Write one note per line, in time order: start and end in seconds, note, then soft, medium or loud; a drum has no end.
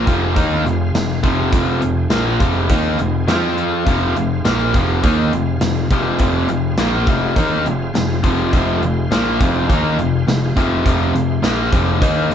0.00 1.51 C4 medium
0.00 1.51 F4 medium
0.00 1.51 G#4 medium
0.00 1.51 F5 medium
0.06 0.34 F1 medium
0.06 0.35 F2 medium
0.06 0.35 C3 medium
0.06 0.35 F3 medium
0.06 kick loud
0.06 closed hi-hat medium
0.35 0.64 D#2 loud
0.35 0.64 D#3 loud
0.35 0.64 A#3 loud
0.35 0.64 D#4 loud
0.35 kick loud
0.35 closed hi-hat medium
0.64 0.92 F1 medium
0.64 0.89 F2 medium
0.64 0.89 C3 medium
0.64 closed hi-hat medium
0.94 1.21 F1 medium
0.94 1.18 F2 medium
0.94 1.18 C3 medium
0.94 snare loud
0.94 closed hi-hat loud
0.94 tambourine loud
1.23 1.51 F1 medium
1.23 1.51 F2 medium
1.23 1.51 C3 medium
1.23 1.51 F3 loud
1.23 kick loud
1.23 closed hi-hat medium
1.52 1.80 F1 medium
1.52 1.80 F2 medium
1.52 1.80 C3 medium
1.52 1.81 F3 medium
1.52 3.84 C4 medium
1.52 3.84 F4 medium
1.52 3.84 G#4 medium
1.52 kick loud
1.52 closed hi-hat loud
1.81 2.09 F1 medium
1.81 2.05 F2 medium
1.81 2.05 C3 medium
1.81 closed hi-hat medium
2.10 2.38 A#1 medium
2.10 2.39 A#2 medium
2.10 2.39 F3 loud
2.10 2.39 A#3 loud
2.10 snare loud
2.10 closed hi-hat loud
2.10 tambourine loud
2.40 2.67 F1 medium
2.40 2.68 F2 medium
2.40 2.69 C3 medium
2.40 2.69 F3 medium
2.40 kick loud
2.40 closed hi-hat medium
2.69 2.97 D#2 medium
2.69 2.98 D#3 loud
2.69 2.98 A#3 loud
2.69 2.98 D#4 loud
2.69 kick loud
2.69 closed hi-hat medium
2.98 3.27 F1 medium
2.98 3.22 F2 medium
2.98 3.22 C3 medium
2.98 closed hi-hat medium
3.28 3.82 F2 medium
3.28 3.85 F3 loud
3.28 3.86 C4 medium
3.28 3.86 F4 loud
3.28 snare loud
3.28 closed hi-hat medium
3.28 tambourine loud
3.58 closed hi-hat medium
3.85 4.14 F1 medium
3.85 4.14 F2 medium
3.85 4.15 C3 medium
3.85 4.15 F3 loud
3.85 6.17 C4 medium
3.85 6.17 F4 medium
3.85 6.18 G#4 medium
3.85 6.17 F5 medium
3.85 kick loud
3.85 closed hi-hat medium
4.16 4.43 F1 medium
4.16 4.39 F2 medium
4.16 4.40 C3 medium
4.16 closed hi-hat medium
4.45 4.72 A#1 medium
4.45 4.73 A#2 medium
4.45 4.73 F3 medium
4.45 4.74 A#3 loud
4.45 snare loud
4.45 closed hi-hat medium
4.45 tambourine loud
4.74 5.01 F1 medium
4.74 5.02 F2 medium
4.74 5.02 C3 medium
4.74 5.02 F3 loud
4.74 kick loud
4.74 closed hi-hat medium
5.03 5.31 D#2 loud
5.03 5.31 D#3 medium
5.03 5.31 A#3 loud
5.03 5.32 D#4 loud
5.03 kick loud
5.03 closed hi-hat medium
5.32 5.60 F1 medium
5.32 5.56 F2 medium
5.32 5.56 C3 medium
5.32 closed hi-hat medium
5.61 5.89 F1 medium
5.61 5.85 F2 medium
5.61 5.85 C3 medium
5.61 snare loud
5.61 closed hi-hat loud
5.61 tambourine loud
5.90 6.18 F1 medium
5.90 6.18 F2 medium
5.90 6.20 C3 medium
5.90 6.20 F3 loud
5.90 kick loud
5.90 closed hi-hat medium
6.19 6.47 F1 medium
6.19 6.48 F2 loud
6.19 6.49 C3 medium
6.19 6.49 F3 medium
6.19 8.50 C4 medium
6.19 8.50 F4 medium
6.19 8.49 G#4 medium
6.19 8.49 F5 medium
6.19 kick loud
6.19 closed hi-hat loud
6.48 6.76 F1 medium
6.48 6.73 F2 medium
6.48 6.73 C3 medium
6.48 closed hi-hat medium
6.78 7.05 A#1 medium
6.78 7.07 A#2 medium
6.78 7.07 F3 loud
6.78 7.07 A#3 loud
6.78 snare loud
6.78 closed hi-hat loud
6.78 tambourine loud
7.07 7.34 F1 medium
7.07 7.36 F2 loud
7.07 7.36 C3 medium
7.07 7.36 F3 medium
7.07 kick loud
7.07 closed hi-hat medium
7.36 7.63 D#2 loud
7.36 7.65 D#3 loud
7.36 7.65 A#3 loud
7.36 7.65 D#4 loud
7.36 kick medium
7.36 closed hi-hat medium
7.65 7.92 F1 medium
7.65 7.89 F2 medium
7.65 7.89 C3 medium
7.65 closed hi-hat medium
7.94 8.21 F1 medium
7.94 8.18 F2 medium
7.94 8.18 C3 medium
7.94 snare loud
7.94 closed hi-hat medium
7.94 tambourine loud
8.23 8.51 F1 medium
8.23 8.52 F2 medium
8.23 8.52 C3 medium
8.23 8.52 F3 loud
8.23 kick medium
8.23 closed hi-hat medium
8.50 8.80 F1 medium
8.50 8.81 F2 medium
8.50 8.81 C3 loud
8.50 10.82 F4 medium
8.50 10.82 G#4 medium
8.50 10.82 C5 medium
8.50 10.82 F5 medium
8.50 kick loud
8.50 closed hi-hat medium
8.54 8.82 F3 loud
8.81 9.09 F1 medium
8.81 9.05 F2 medium
8.81 9.05 C3 medium
8.81 closed hi-hat medium
9.11 9.38 A#1 medium
9.11 9.39 A#2 medium
9.11 9.39 F3 medium
9.11 9.40 A#3 loud
9.11 snare loud
9.11 closed hi-hat medium
9.11 tambourine loud
9.40 9.67 F1 medium
9.40 9.68 F2 medium
9.40 9.68 C3 medium
9.40 9.68 F3 loud
9.40 kick loud
9.40 closed hi-hat medium
9.69 9.96 D#2 loud
9.69 9.97 D#3 medium
9.69 9.97 A#3 loud
9.69 9.98 D#4 loud
9.69 kick loud
9.69 closed hi-hat medium
9.97 10.25 F1 medium
9.97 10.22 F2 medium
9.97 10.22 C3 medium
9.97 closed hi-hat medium
10.27 10.54 F1 medium
10.27 10.51 F2 medium
10.27 10.51 C3 medium
10.27 snare loud
10.27 closed hi-hat medium
10.27 tambourine loud
10.56 10.84 F1 medium
10.56 10.84 F2 medium
10.56 10.85 C3 loud
10.56 10.85 F3 loud
10.56 kick medium
10.56 closed hi-hat medium
10.83 11.13 F1 medium
10.83 11.13 F2 medium
10.83 11.13 C3 medium
10.83 11.14 F3 medium
10.83 12.35 G#4 medium
10.83 12.35 C5 medium
10.83 12.35 F5 medium
10.83 kick loud
10.83 closed hi-hat medium
11.14 11.41 F1 medium
11.14 11.38 F2 medium
11.14 11.38 C3 medium
11.14 closed hi-hat medium
11.43 11.70 A#1 medium
11.43 11.72 A#2 medium
11.43 11.71 F3 medium
11.43 11.72 A#3 loud
11.43 snare loud
11.43 closed hi-hat loud
11.43 tambourine loud
11.72 12.00 F1 loud
11.72 12.01 F2 medium
11.72 12.01 C3 medium
11.72 12.01 F3 loud
11.72 kick loud
11.72 closed hi-hat medium
12.01 12.29 D#2 loud
12.01 12.30 D#3 loud
12.01 12.30 A#3 loud
12.01 12.30 D#4 loud
12.01 kick loud
12.01 closed hi-hat loud
12.30 12.35 F1 medium
12.30 12.35 F2 medium
12.30 12.35 C3 medium
12.30 closed hi-hat medium